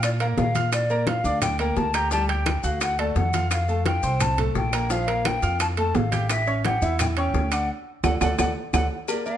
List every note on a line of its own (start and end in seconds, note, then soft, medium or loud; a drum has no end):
0.00 0.34 A#2 loud
0.00 0.14 F4 medium
0.00 0.10 D5 loud
0.00 0.14 F5 medium
0.00 0.14 F6 medium
0.00 high bongo medium
0.00 high conga soft
0.00 high timbale loud
0.00 claves medium
0.00 maracas medium
0.20 0.49 A#3 medium
0.20 0.49 A#4 medium
0.20 0.27 F5 medium
0.20 0.49 A#5 medium
0.20 high bongo soft
0.20 high conga soft
0.20 high timbale medium
0.20 maracas soft
0.38 1.19 A#2 medium
0.38 0.70 F5 loud
0.38 high bongo medium
0.38 low bongo medium
0.38 high conga medium
0.38 low timbale medium
0.38 maracas soft
0.55 0.84 F4 medium
0.55 0.84 F5 medium
0.55 0.84 F6 medium
0.55 high bongo soft
0.55 high conga medium
0.55 high timbale medium
0.55 maracas medium
0.72 1.05 D5 medium
0.72 high bongo medium
0.72 high conga soft
0.72 high timbale medium
0.72 claves medium
0.72 maracas medium
0.89 1.04 A#3 medium
0.89 1.04 A#4 medium
0.89 1.05 A#5 medium
0.89 high conga soft
0.89 maracas soft
1.07 1.22 F4 medium
1.07 1.22 F5 medium
1.07 1.40 F5 loud
1.07 1.22 F6 medium
1.07 high bongo medium
1.07 high conga loud
1.07 high timbale medium
1.07 maracas soft
1.24 1.73 D2 loud
1.24 1.53 D4 medium
1.24 1.53 D5 medium
1.24 1.54 D6 medium
1.24 maracas medium
1.42 1.58 G5 loud
1.42 high bongo medium
1.42 high conga soft
1.42 low conga medium
1.42 high timbale loud
1.42 claves medium
1.42 maracas medium
1.59 1.88 A#3 medium
1.59 1.88 A#4 medium
1.59 1.79 G5 medium
1.59 1.88 A#5 medium
1.59 high conga soft
1.59 high timbale medium
1.59 maracas soft
1.76 2.58 D2 medium
1.76 1.96 A5 loud
1.76 high bongo medium
1.76 low bongo medium
1.76 high conga soft
1.76 maracas soft
1.94 2.09 G4 medium
1.94 2.09 G5 medium
1.94 2.11 A#5 loud
1.94 2.09 G6 medium
1.94 high conga soft
1.94 high timbale medium
1.94 claves medium
1.94 maracas medium
2.11 2.26 G3 medium
2.11 2.26 G4 medium
2.11 2.26 G5 medium
2.11 2.28 A5 loud
2.11 high bongo medium
2.11 high conga soft
2.11 maracas medium
2.29 2.58 G4 medium
2.29 2.66 G5 loud
2.29 2.58 G5 medium
2.29 2.58 G6 medium
2.29 high bongo soft
2.29 high conga soft
2.29 high timbale medium
2.29 maracas soft
2.46 high bongo medium
2.46 high conga loud
2.46 high timbale loud
2.46 claves medium
2.46 maracas soft
2.64 3.12 D2 medium
2.64 2.92 F#4 medium
2.64 2.81 F5 medium
2.64 2.93 F#5 medium
2.64 2.93 F#6 medium
2.64 high conga soft
2.64 maracas medium
2.81 3.01 F#5 loud
2.81 high bongo medium
2.81 high conga soft
2.81 high timbale loud
2.81 claves medium
2.81 maracas medium
2.99 3.27 A3 medium
2.99 3.27 A4 medium
2.99 3.18 D5 medium
2.99 3.27 A5 medium
2.99 high bongo soft
2.99 high conga soft
2.99 high timbale medium
2.99 maracas soft
3.16 3.97 F2 medium
3.16 3.51 F#5 loud
3.16 high bongo medium
3.16 low bongo medium
3.16 high conga medium
3.16 maracas soft
3.33 3.62 F4 medium
3.33 3.62 F5 medium
3.33 3.62 F6 medium
3.33 high bongo soft
3.33 high conga medium
3.33 high timbale medium
3.33 maracas medium
3.51 3.83 F5 loud
3.51 high bongo medium
3.51 high conga soft
3.51 high timbale medium
3.51 claves medium
3.51 maracas medium
3.68 3.83 A3 medium
3.68 3.83 A4 medium
3.68 3.83 A5 medium
3.68 high conga soft
3.68 maracas soft
3.85 4.00 F4 medium
3.85 4.00 F5 medium
3.85 4.23 G5 loud
3.85 4.00 F6 medium
3.85 high bongo medium
3.85 high conga loud
3.85 high timbale medium
3.85 maracas soft
4.03 4.52 C2 medium
4.03 4.32 C4 medium
4.03 4.32 C5 medium
4.03 4.32 C6 medium
4.03 maracas medium
4.20 4.38 A5 loud
4.20 high bongo medium
4.20 high conga soft
4.20 low conga medium
4.20 high timbale medium
4.20 claves medium
4.20 maracas medium
4.38 4.67 A3 medium
4.38 4.67 A4 medium
4.38 4.67 A5 medium
4.38 high conga soft
4.38 low conga medium
4.38 high timbale medium
4.38 maracas soft
4.55 5.37 A#1 medium
4.55 4.93 G5 medium
4.55 high bongo medium
4.55 low bongo medium
4.55 high conga soft
4.55 maracas soft
4.73 4.87 A#3 medium
4.73 4.87 A#4 medium
4.73 4.87 A#5 medium
4.73 high conga soft
4.73 high timbale medium
4.73 claves medium
4.73 maracas medium
4.90 5.04 F3 medium
4.90 5.05 F4 medium
4.90 5.05 F5 medium
4.90 5.28 F5 loud
4.90 high bongo medium
4.90 high conga soft
4.90 maracas loud
5.07 5.36 A#3 medium
5.07 5.36 A#4 medium
5.07 5.36 A#5 medium
5.07 high bongo soft
5.07 high conga soft
5.07 high timbale medium
5.07 maracas soft
5.25 5.61 G5 loud
5.25 high bongo medium
5.25 high conga loud
5.25 high timbale loud
5.25 claves medium
5.25 maracas soft
5.42 5.91 F2 medium
5.42 5.71 F4 medium
5.42 5.71 F5 medium
5.42 5.71 F6 medium
5.42 high conga soft
5.42 maracas medium
5.60 5.67 A5 loud
5.60 high bongo medium
5.60 high conga soft
5.60 high timbale loud
5.60 claves medium
5.60 maracas medium
5.77 6.06 A3 medium
5.77 6.06 A4 medium
5.77 6.06 A5 medium
5.77 5.97 A5 medium
5.77 high bongo soft
5.77 high conga soft
5.77 high timbale medium
5.77 maracas soft
5.95 6.76 A1 loud
5.95 6.30 F5 medium
5.95 high bongo medium
5.95 low bongo medium
5.95 high conga medium
5.95 low timbale medium
5.95 maracas soft
6.12 6.41 G4 medium
6.12 6.41 G5 medium
6.12 6.41 G6 medium
6.12 high bongo soft
6.12 high conga medium
6.12 high timbale medium
6.12 maracas medium
6.29 6.63 E5 loud
6.29 high bongo medium
6.29 high conga soft
6.29 high timbale medium
6.29 claves medium
6.29 maracas medium
6.47 6.61 C#4 medium
6.47 6.61 C#5 medium
6.47 6.62 C#6 medium
6.47 high conga soft
6.47 maracas soft
6.65 6.79 G4 medium
6.65 6.97 F#5 medium
6.65 6.79 G5 medium
6.65 6.80 G6 medium
6.65 high bongo medium
6.65 high conga loud
6.65 high timbale medium
6.65 maracas soft
6.82 7.31 E2 medium
6.82 7.11 E4 medium
6.82 7.11 E5 medium
6.82 7.11 E6 medium
6.82 maracas medium
6.99 7.07 G5 loud
6.99 high bongo medium
6.99 high conga soft
6.99 low conga medium
6.99 high timbale loud
6.99 claves medium
6.99 maracas medium
7.17 7.45 C#4 medium
7.17 7.46 C#5 medium
7.17 7.55 G5 medium
7.17 7.46 C#6 medium
7.17 high conga soft
7.17 high timbale medium
7.17 maracas soft
7.34 7.66 D2 loud
7.34 high bongo medium
7.34 low bongo medium
7.34 high conga soft
7.34 maracas soft
7.51 7.66 D4 medium
7.51 7.66 D5 medium
7.51 7.70 F#5 medium
7.51 7.66 D6 medium
7.51 high conga soft
7.51 high timbale medium
7.51 claves medium
7.51 maracas medium
8.04 8.17 D2 medium
8.04 8.15 A4 medium
8.04 8.15 D5 medium
8.04 8.15 F#5 medium
8.04 8.15 F#5 loud
8.04 low bongo loud
8.04 high conga loud
8.04 high timbale loud
8.04 claves medium
8.04 maracas loud
8.21 8.34 D2 medium
8.21 8.33 A4 loud
8.21 8.33 D5 loud
8.21 8.33 F#5 loud
8.21 8.33 F#5 medium
8.21 low bongo loud
8.21 high conga loud
8.21 high timbale loud
8.21 claves loud
8.21 maracas loud
8.38 8.52 D2 medium
8.38 8.50 A4 loud
8.38 8.50 D5 loud
8.38 8.50 F#5 medium
8.38 8.50 F#5 loud
8.38 low bongo loud
8.38 high conga loud
8.38 high timbale loud
8.38 claves loud
8.38 maracas loud
8.73 8.86 D2 loud
8.73 8.85 A4 loud
8.73 8.85 D5 loud
8.73 8.85 F#5 loud
8.73 low bongo loud
8.73 high conga loud
8.73 high timbale loud
8.73 claves loud
8.73 maracas loud
9.08 9.23 A#3 medium
9.08 9.23 A#4 medium
9.08 9.23 D5 medium
9.08 cowbell loud
9.08 high conga soft
9.08 low agogo loud
9.08 claves medium
9.08 maracas medium
9.26 9.37 A#3 medium
9.26 9.37 A#4 medium
9.26 9.37 D5 medium
9.26 9.37 F5 loud
9.26 high conga soft
9.26 maracas soft